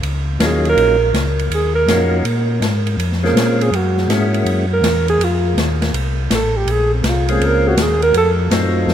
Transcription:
0.02 tonewheel organ C#2, ride
0.39 tonewheel organ D#2 F#3 A#3 C#4 D#4 F4, snare, hi-hat pedal, ride
0.45 alto saxophone G#4
0.65 alto saxophone A#4, ride
0.77 tonewheel organ A#1, ride
1.13 tonewheel organ C#2, snare, hi-hat pedal, ride
1.39 ride
1.50 tonewheel organ D#2, ride
1.55 alto saxophone G#4
1.75 alto saxophone A#4
1.86 tonewheel organ F2 A#3 C#4 D#4 F4 F#4, snare, hi-hat pedal, ride
2.24 tonewheel organ A#2, ride
2.60 tonewheel organ G#2, snare, hi-hat pedal, ride
2.87 ride
2.97 tonewheel organ F2, ride
3.12 snare
3.23 tonewheel organ G#3 A#3 C4 C#4 F4, alto saxophone A#4, snare
3.34 tonewheel organ A#2, snare, hi-hat pedal, ride
3.61 alto saxophone G#4, ride
3.71 tonewheel organ F#2, ride
3.75 alto saxophone F#4
3.97 snare
4.08 tonewheel organ G#2 G#3 A#3 C#4 E4 F#4, snare, hi-hat pedal, ride
4.34 ride
4.45 tonewheel organ F#2, ride
4.73 alto saxophone A#4
4.82 tonewheel organ E2, snare, hi-hat pedal, ride
5.08 alto saxophone G#4, ride
5.19 tonewheel organ F2, ride
5.24 alto saxophone F4
5.56 tonewheel organ D#2, snare, hi-hat pedal, ride
5.82 snare, ride
5.93 tonewheel organ C2, ride
6.30 tonewheel organ A1, snare, hi-hat pedal, ride
6.34 alto saxophone A4
6.56 alto saxophone G4
6.67 tonewheel organ A#1, ride
6.71 alto saxophone G#4
6.94 alto saxophone C4
7.03 tonewheel organ C2, snare, hi-hat pedal, ride
7.09 alto saxophone F4
7.29 tonewheel organ G#3 A#3 C4 C#4 F4, alto saxophone G#4, ride
7.40 tonewheel organ C#2, ride
7.45 alto saxophone A#4
7.68 alto saxophone F#4
7.76 tonewheel organ D#2, snare, hi-hat pedal, ride
7.82 alto saxophone G#4
8.02 alto saxophone A#4, ride
8.14 tonewheel organ F2, alto saxophone A4, ride
8.50 tonewheel organ F#2 F#3 A3 C4 D#4 F4, snare, hi-hat pedal, ride
8.87 tonewheel organ F2, snare

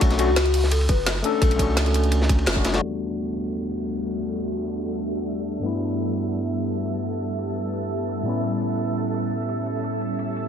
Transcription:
Already playing: tine electric piano A3 C#4 D4 F#4
0.01 sub bass B1, kick, closed hi-hat, ride
0.11 snare, closed hi-hat
0.17 tine electric piano A3 C#4 D4 F#4, soft synth lead F#4, closed hi-hat, ride
0.28 sub bass C#2
0.36 snare, closed hi-hat, ride
0.46 closed hi-hat
0.54 closed hi-hat, open hi-hat
0.64 snare
0.72 soft synth lead A4, closed hi-hat, ride
0.81 ride
0.89 sub bass F#1, soft synth lead B4, kick, closed hi-hat, ride
1.06 snare, closed hi-hat, ride
1.16 snare
1.23 tine electric piano A3 C#4 D4 A4, soft synth lead A4, closed hi-hat
1.42 sub bass B1, kick, closed hi-hat, ride
1.51 closed hi-hat, ride
1.56 tine electric piano A3 C#4, kick, closed hi-hat, ride
1.60 tine electric piano D4 F#4
1.69 sub bass C#2
1.77 snare, closed hi-hat, ride
1.86 closed hi-hat
1.94 closed hi-hat, ride
2.04 closed hi-hat
2.12 closed hi-hat, ride
2.22 snare
2.29 kick, closed hi-hat, ride
2.39 ride
2.46 sub bass F#1, snare, closed hi-hat, ride
2.54 tine electric piano A3 C#4 D4 F#4, kick, snare
2.65 sub bass F#1, snare, closed hi-hat, ride
2.72 tine electric piano G3 A3 D4 F#4, snare, closed hi-hat, ride
2.79 tine electric piano E2 G3 A3 B3, ambient pad G3 D4 F#4 A4 E5, downlifter
2.84 tine electric piano D4 F#4
3.70 closed hi-hat
4.05 closed hi-hat
4.22 closed hi-hat
4.40 closed hi-hat
4.58 closed hi-hat
4.93 closed hi-hat
5.10 closed hi-hat
5.28 closed hi-hat
5.45 closed hi-hat
5.55 closed hi-hat
5.60 tine electric piano G2 A3 B3, ambient pad B3, closed hi-hat
5.64 tine electric piano D4 E4
5.80 closed hi-hat
5.98 closed hi-hat
6.16 closed hi-hat
6.33 closed hi-hat
6.51 closed hi-hat
6.68 closed hi-hat
6.86 closed hi-hat
6.95 closed hi-hat
7.03 closed hi-hat
7.13 closed hi-hat
7.21 closed hi-hat
7.38 closed hi-hat
7.48 closed hi-hat
7.56 closed hi-hat
7.65 closed hi-hat
7.73 closed hi-hat
7.91 closed hi-hat
8.09 closed hi-hat
8.23 tine electric piano A2 G3 B3, ambient pad C#4, closed hi-hat
8.28 tine electric piano C#4 E4
8.35 closed hi-hat
8.44 closed hi-hat
8.53 closed hi-hat
8.61 closed hi-hat
8.79 closed hi-hat
8.96 closed hi-hat
9.14 closed hi-hat
9.31 closed hi-hat
9.49 closed hi-hat
9.66 closed hi-hat
9.76 closed hi-hat
9.84 closed hi-hat
9.93 closed hi-hat
10.02 closed hi-hat
10.19 closed hi-hat
10.37 closed hi-hat

